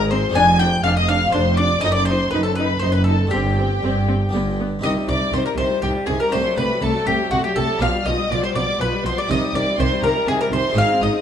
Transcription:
Already playing: G#1 G#2 G#3 C4 D#4 G#4
0.10 C4 C5 C6
0.30 C4 D4 G#4
0.34 F1 F2 D4 G#5 G#6
0.59 D4 G5 G6
0.83 F1 F2 D4 F5 F6
0.96 D#5 D#6
1.08 D4 F5 F6
1.32 F1 F2 D4 C5 C6
1.57 D4 D5 D6
1.79 F#1 F#2 C4 D#4 A4 D#5 D#6
1.83 F#2 D#4 D#5
1.92 D5 D6
2.05 D#4 C5 C6
2.31 F#1 F#2 D#4 B4 B5
2.43 A4 A5
2.55 D#4 B4 B5
2.79 F#1 F#2 D#4 C5 C6
2.92 B4 B5
3.04 D#4 A4 A5
3.27 C4 D4 G4
3.31 G1 G2 C4 G4 G5
3.58 C4
3.81 G1 G2 C4
4.08 C4
4.29 G2 B3 D4 G4
4.33 G1 G2 B3
4.59 B3
4.79 C4 D#4 G4
4.83 C2 C3 D#3 D#5 D#6
4.96 G3
5.08 C2 C3 D#3 D5 D6
5.21 G3
5.33 C2 C3 D#3 C5 C6
5.44 G3 A#4 A#5
5.57 C2 C3 D#3 C5 C6
5.70 G3
5.82 C2 C3 D#3 G4 G5
5.95 G3
6.06 C2 C3 D#3 G#4 G#5
6.18 G3 A#4 A#5
6.28 C3 A3 D4 F#4 C5
6.33 C2 C3 A3 C6
6.45 F#3
6.56 C2 C3 A3 B4 B5
6.70 F#3
6.81 C2 C3 A3 A4 A5
6.95 F#3
7.06 C2 C3 A3 G4 G5
7.19 F#3
7.31 C2 C3 A3 F#4 F#5
7.43 F#3 G4 G5
7.56 C2 C3 A3 A4 A5
7.68 F#3
7.79 B1 B2 F3 D4 G4 F5 F6
7.94 G3
8.06 B1 B2 F3 D#5 D#6
8.19 G3
8.30 B1 B2 F3 D5 D6
8.42 G3 C5 C6
8.55 B1 B2 F3 D5 D6
8.68 G3
8.80 B1 B2 F3 B4 B5
8.93 G3
9.04 B1 B2 F3 C5 C6
9.18 G3 D5 D6
9.26 C2 C3 C4 D#4 G4 D#5 D#6
9.30 C3 D#3 D#5
9.43 G3
9.53 C2 C3 D#3 D5 D6
9.67 G3
9.78 C2 C3 D#3 C5 C6
9.92 G3
10.02 C2 C3 D#3 A#4 A#5
10.16 G3
10.27 C2 C3 D#3 G#4 G#5
10.40 G3 A#4 A#5
10.51 C2 C3 D#3 C5 C6
10.66 G3
10.70 G#3 C4 D#4
10.75 G#1 G#2 D#4 G#4 F5 F6
10.90 C4
11.00 G#1 G#2 D#4 D#5 D#6
11.14 C4

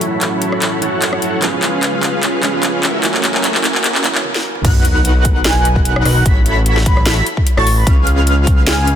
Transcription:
Already playing: A2 E3 F#3 A3 C#4 E4 F#4 A4 C#5 B5, riser
0.01 closed hi-hat
0.21 clap, closed hi-hat
0.42 closed hi-hat
0.52 cross-stick
0.62 clap, closed hi-hat
0.80 E3 F#3 A3 C#4 E4 F#4 A4 C#5 F#5, closed hi-hat
1.02 clap, closed hi-hat
1.13 cross-stick
1.22 closed hi-hat
1.40 C#3 F3 G#3 B3 C#4 F4 G#4 B4 F5, clap, closed hi-hat
1.45 G#4
1.62 clap, closed hi-hat
1.83 clap, closed hi-hat
2.03 clap, closed hi-hat
2.23 clap, closed hi-hat
2.42 F3 G#3 B3 C#4 G#4, clap, closed hi-hat
2.63 clap, closed hi-hat
2.83 F#2 F#3 C#4 E4 F#4 A#4 E5, clap, closed hi-hat
3.01 E3 F#3 A#3 C#4 E4 F#4 A#4 G#5, clap, closed hi-hat
3.05 F#4
3.14 clap
3.24 clap, closed hi-hat
3.34 clap
3.44 clap, closed hi-hat
3.55 clap
3.64 clap, closed hi-hat
3.75 clap
3.84 clap, closed hi-hat
3.95 clap
4.03 E3 F#3 A#3 C#4 E4, clap, closed hi-hat
4.13 E3 F#3 A#3 C#4, clap
4.17 A#4
4.24 high tom
4.35 snare
4.55 mid tom
4.64 B1 D#4 F#4 A#4 B4 F#5 F#6, kick, closed hi-hat, crash, sub drop
4.85 closed hi-hat
5.05 closed hi-hat
5.25 kick, closed hi-hat
5.45 G#5, snare, closed hi-hat
5.56 G#5
5.65 closed hi-hat
5.76 kick
5.85 closed hi-hat
5.96 cross-stick
6.05 B1 D#4 F#4 A#4 B4 F#5 F#6, cross-stick, open hi-hat
6.25 A1 E4 F#4 A4 C#5 B5 B6, kick, closed hi-hat
6.46 closed hi-hat
6.66 closed hi-hat
6.77 snare
6.86 B5, kick, closed hi-hat
6.97 cross-stick
7.06 snare, closed hi-hat
7.26 closed hi-hat
7.37 kick
7.47 closed hi-hat
7.57 A1 E4 F#4 A4 C#5 A5 C#6 A6, cross-stick
7.67 open hi-hat
7.78 B5
7.87 C#2 C#4 F4 G#4 B4 F5 F6, kick, closed hi-hat
8.07 closed hi-hat
8.27 closed hi-hat
8.47 kick, closed hi-hat
8.67 G#5, snare, closed hi-hat
8.78 G#5
8.87 closed hi-hat

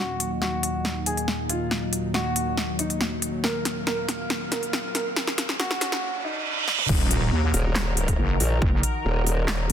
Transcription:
0.00 D#2 A#2 F#3 D#4 F#4, riser
0.20 closed hi-hat
0.42 F#4, snare
0.63 closed hi-hat
0.85 snare
1.06 G#4, closed hi-hat
1.17 closed hi-hat
1.28 snare
1.50 F4, closed hi-hat
1.71 snare
1.93 closed hi-hat
2.14 F#4, snare
2.36 closed hi-hat
2.58 snare
2.79 D#4, closed hi-hat
2.90 closed hi-hat
3.01 snare
3.22 closed hi-hat
3.44 A#4 F5, snare
3.65 snare, closed hi-hat
3.87 A#4, snare
4.09 snare, closed hi-hat
4.30 snare
4.52 A#4, snare, closed hi-hat
4.63 closed hi-hat
4.73 snare
4.95 A#4, snare, closed hi-hat
5.16 snare
5.27 snare
5.38 snare, closed hi-hat
5.49 snare
5.60 F#4, snare
5.71 snare
5.81 snare, closed hi-hat
5.92 snare
6.03 reverse cymbal
6.24 D#4
6.68 snare
6.79 mid tom
6.89 D#1 D#3 D#4 F#4 A#4, kick, crash, impact
7.11 closed hi-hat
7.32 D#2
7.54 D#1, open hi-hat
7.75 snare, clap
7.97 closed hi-hat
8.08 kick, closed hi-hat
8.19 F#1
8.40 A#1, open hi-hat
8.62 F#1, kick
8.83 closed hi-hat
9.05 D#1
9.27 open hi-hat
9.48 snare, clap

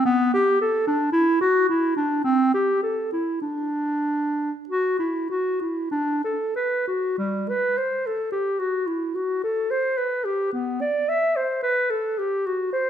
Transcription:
0.05 B3
0.33 G4
0.61 A4
0.87 D4
1.12 E4
1.41 F#4
1.69 E4
1.96 D4
2.24 C4
2.54 G4
2.83 A4
3.12 E4
3.42 D4
4.69 F#4
4.99 E4
5.30 F#4
5.61 E4
5.91 D4
6.24 A4
6.56 B4
6.87 F#4
7.18 G3
7.49 B4
7.77 C5
8.06 A4
8.32 G4
8.59 F#4
8.87 E4
9.15 F#4
9.44 A4
9.70 C5
9.97 B4
10.24 G4
10.52 B3
10.81 D5
11.09 E5
11.36 C5
11.63 B4
11.90 A4
12.18 G4
12.46 F#4
12.72 C5

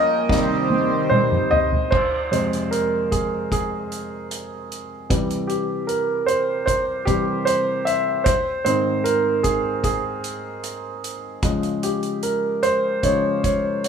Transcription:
Already playing: F3 G3 A#3 C#4 F4 A#4 C#5 D#5 G5
0.29 C3 D#3 G3 C4 D#4 G4 C5, kick, snare
0.70 high tom
1.10 C5, mid tom
1.32 mid tom
1.51 D#5, floor tom
1.72 floor tom
1.91 C5, kick, crash
2.31 F2 C3 G#3 C5, closed hi-hat
2.53 closed hi-hat
2.71 A#4, closed hi-hat
3.11 G#4, kick, closed hi-hat
3.52 G#4, kick, closed hi-hat
3.92 closed hi-hat
4.31 closed hi-hat
4.72 closed hi-hat
5.09 C3 E3 G3, kick, closed hi-hat
5.30 closed hi-hat
5.47 G4, closed hi-hat
5.87 A#4, closed hi-hat
6.26 C5, closed hi-hat
6.66 C5, kick, closed hi-hat
7.05 C3 E3 G3 G4, kick, closed hi-hat
7.45 C5, closed hi-hat
7.85 E5, closed hi-hat
8.24 C5, kick, closed hi-hat
8.65 G#2 D#3 C4 C5, closed hi-hat
9.04 A#4, closed hi-hat
9.43 G#4, kick, closed hi-hat
9.84 G#4, kick, closed hi-hat
10.24 closed hi-hat
10.64 closed hi-hat
11.04 closed hi-hat
11.43 C#3 F3 G#3, kick, closed hi-hat
11.63 closed hi-hat
11.83 G4, closed hi-hat
12.03 closed hi-hat
12.23 A#4, closed hi-hat
12.63 C5, closed hi-hat
13.03 C#3 F3 G#3 C#5, kick, closed hi-hat
13.44 C#5, kick, closed hi-hat
13.84 C#5, closed hi-hat

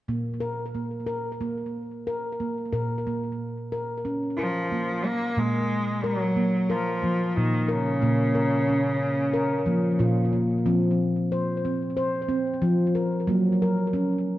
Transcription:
0.08 A#2 A#3
0.40 A#4
0.75 A#3
1.07 A#4
1.41 A#3
2.07 A#4
2.40 A#3
2.73 A#2 A#4
3.07 A#3
3.72 A#4
4.05 C#4
4.37 F3 A#4
4.72 A#3
5.06 A#3
5.37 A#2 G#3 A#3
6.04 F#3 A#4
6.37 A#3
6.70 F3 A#4
7.02 F3 A#3
7.31 F3
7.36 A#2 D#3
7.68 C#3 A#4
8.02 A#2 A#3
8.35 A#4
8.69 C#4
9.34 A#4
9.66 F3 A#3
9.99 A#2 F4
10.33 A#3
10.66 F3 C4
11.32 C5
11.65 C4
11.97 C5
12.29 C4
12.62 F3
12.95 A#4
13.27 F#3 A#3
13.62 A#4
13.93 C#4

